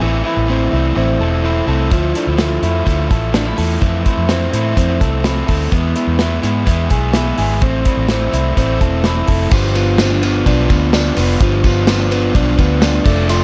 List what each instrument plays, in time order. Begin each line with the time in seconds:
Already playing: clean electric guitar E4
0.00 fingered electric bass A1, overdriven electric guitar A2 E3 A3 C4 E4
0.23 overdriven electric guitar A3 C4 E4
0.37 fingered electric bass A1
0.47 overdriven electric guitar E3 A3 C4 E4
0.71 fingered electric bass C2, overdriven electric guitar A3 C4 E4
0.95 fingered electric bass A1, overdriven electric guitar A2 E3 A3 C4 E4
1.19 fingered electric bass E1, overdriven electric guitar A3 C4 E4, clean electric guitar A4
1.42 overdriven electric guitar E3 A3 C4 E4
1.67 fingered electric bass C2, overdriven electric guitar A3 C4 E4, clean electric guitar A4
1.90 fingered electric bass D2, overdriven electric guitar D3 F3 A3 E4, kick, closed hi-hat
2.14 overdriven electric guitar F3 A3 E4, clean electric guitar D4, closed hi-hat
2.27 fingered electric bass D2, clean electric guitar E4
2.38 overdriven electric guitar D3 F3 A3 E4, snare, closed hi-hat
2.62 fingered electric bass F2, overdriven electric guitar F3 A3 E4, closed hi-hat
2.86 fingered electric bass D2, overdriven electric guitar D3 F3 A3 E4, kick, closed hi-hat
3.09 fingered electric bass A1, overdriven electric guitar F3 A3 E4, clean electric guitar A4, kick, closed hi-hat
3.33 overdriven electric guitar D3 F3 A3 E4, clean electric guitar D4, snare, closed hi-hat
3.46 clean electric guitar E4
3.57 fingered electric bass E2, overdriven electric guitar F3 A3 E4, clean electric guitar A4, open hi-hat
3.81 fingered electric bass F2, clean electric guitar E3, overdriven electric guitar F3 A3 C4 E4, kick, closed hi-hat
4.04 overdriven electric guitar A3 C4 E4, kick, closed hi-hat
4.17 fingered electric bass F2
4.29 overdriven electric guitar F3 A3 C4 E4, snare, closed hi-hat
4.52 fingered electric bass A2, overdriven electric guitar A3 C4 E4, closed hi-hat
4.76 fingered electric bass F2, overdriven electric guitar F3 A3 C4 E4, kick, closed hi-hat
5.00 fingered electric bass C2, overdriven electric guitar A3 C4 E4, clean electric guitar A4, kick, closed hi-hat
5.23 overdriven electric guitar F3 A3 C4 E4, snare, closed hi-hat
5.47 fingered electric bass D2, overdriven electric guitar A3 C4 E4, clean electric guitar A4, kick, open hi-hat
5.71 fingered electric bass E2, overdriven electric guitar E3 G#3 B3 E4, kick, closed hi-hat
5.95 overdriven electric guitar G#3 B3 E4, closed hi-hat
6.07 fingered electric bass E2
6.18 overdriven electric guitar E3 G#3 B3 E4, snare, closed hi-hat
6.42 fingered electric bass G#2, overdriven electric guitar G#3 B3 E4, closed hi-hat
6.66 fingered electric bass E2, overdriven electric guitar E3 G#3 B3 E4, kick, closed hi-hat
6.89 fingered electric bass B1, overdriven electric guitar G#3 B3 E4, clean electric guitar G#4, kick, closed hi-hat
7.13 overdriven electric guitar E3 G#3 B3 E4, snare, closed hi-hat
7.37 fingered electric bass G#1, overdriven electric guitar G#3 B3 E4, clean electric guitar G#4, open hi-hat
7.61 fingered electric bass A1, overdriven electric guitar A2 E3 A3 C4 E4, kick, closed hi-hat
7.85 overdriven electric guitar A3 C4 E4, kick, closed hi-hat
7.97 fingered electric bass A1
8.08 overdriven electric guitar E3 A3 C4 E4, snare, closed hi-hat
8.33 fingered electric bass C2, overdriven electric guitar A3 C4 E4, closed hi-hat
8.57 fingered electric bass A1, overdriven electric guitar A2 E3 A3 C4 E4, kick, closed hi-hat
8.81 fingered electric bass E1, overdriven electric guitar A3 C4 E4, clean electric guitar A4, kick, closed hi-hat
9.04 overdriven electric guitar E3 A3 C4 E4, snare, closed hi-hat
9.27 fingered electric bass F1, overdriven electric guitar A3 C4 E4, clean electric guitar A4, kick, open hi-hat
9.51 fingered electric bass G1, clean electric guitar F3 G4, overdriven electric guitar G3 D4 F4 B4, kick, crash, tambourine
9.74 clean electric guitar B3, overdriven electric guitar D4 F4 B4, ride, tambourine
9.98 overdriven electric guitar G3 D4 F4 B4, clean electric guitar C4, snare, ride, tambourine
10.11 clean electric guitar D4
10.22 clean electric guitar B3, overdriven electric guitar D4 F4 B4, ride, tambourine
10.46 fingered electric bass B1, overdriven electric guitar G3 D4 F4 B4, kick, ride, tambourine
10.69 fingered electric bass D2, clean electric guitar B3, overdriven electric guitar D4 F4 B4, kick, ride, tambourine
10.93 overdriven electric guitar G3 D4 F4 B4, snare, ride, tambourine
11.17 fingered electric bass F1, clean electric guitar B3, overdriven electric guitar D4 F4 B4, open hi-hat, ride, tambourine
11.41 fingered electric bass G1, clean electric guitar F3 G4, overdriven electric guitar G3 D4 F4 B4, kick, hi-hat pedal, ride, tambourine
11.64 clean electric guitar B3, overdriven electric guitar D4 F4 B4, kick, ride, tambourine
11.87 overdriven electric guitar G3 D4 F4 B4, clean electric guitar C4, snare, ride, tambourine
12.00 clean electric guitar D4
12.11 clean electric guitar B3, overdriven electric guitar D4 F4 B4, ride, tambourine
12.34 fingered electric bass B1, overdriven electric guitar G3 D4 F4 B4, kick, ride, tambourine
12.58 fingered electric bass D2, clean electric guitar B3, overdriven electric guitar D4 F4 B4, kick, ride, tambourine
12.81 overdriven electric guitar G3 D4 F4 B4, snare, ride, tambourine
13.04 fingered electric bass F1, clean electric guitar A3, overdriven electric guitar C4 F4 A4 D5, kick, tambourine, crash
13.28 overdriven electric guitar F3 A3 C4 F4 A4 D5, hi-hat pedal, ride, tambourine